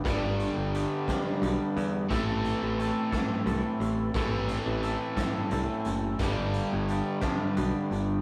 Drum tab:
HH |xxxxxx|xxxxxx|xxxxxx|xxxxxx|
SD |---o--|---o--|---o--|---o--|
BD |o--o--|o--o--|o--o--|o--o--|